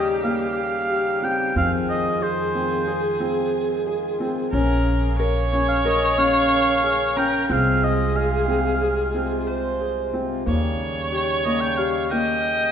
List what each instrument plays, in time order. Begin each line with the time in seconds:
Already playing: upright bass D#2, harmonium C#3 G3 D#4, felt piano G4, viola G4
0.23 felt piano A#3, oboe F5
0.90 felt piano G4
1.22 felt piano C4, oboe G5
1.56 upright bass F2, harmonium D#3 G#3 F4, felt piano C4, viola G#4, oboe F5
1.89 oboe D#5
2.21 felt piano G#4, oboe C5
2.55 felt piano C4
2.88 felt piano G#4
3.20 felt piano C4
3.87 felt piano G#4
4.20 felt piano C4
4.52 upright bass A#1, harmonium C#3 A#3 G#4, felt piano C#4, viola A#4
5.19 felt piano A#4, viola C#5
5.52 felt piano C#4, oboe C#5
5.68 oboe F5
5.85 felt piano A#4, oboe D#5
6.18 felt piano C#4, oboe F5
6.84 felt piano G#4
7.17 felt piano C#4, viola A#4, oboe G5
7.49 upright bass C2, harmonium C3 G#3 F4, felt piano C4, viola G#4, oboe F5
7.84 oboe D#5
8.16 felt piano G#4, oboe F5
8.48 felt piano C4
8.81 felt piano G#4
9.15 felt piano C4
9.47 viola C5
9.81 felt piano G#4
10.13 felt piano C4
10.46 upright bass D#2, harmonium C#3 G3 D#4, felt piano A#3, viola C#5
11.12 felt piano G4
11.45 felt piano A#3, oboe D#5
11.61 oboe G5
11.78 felt piano G4, oboe F5
12.11 felt piano A#3, viola D#5, oboe G5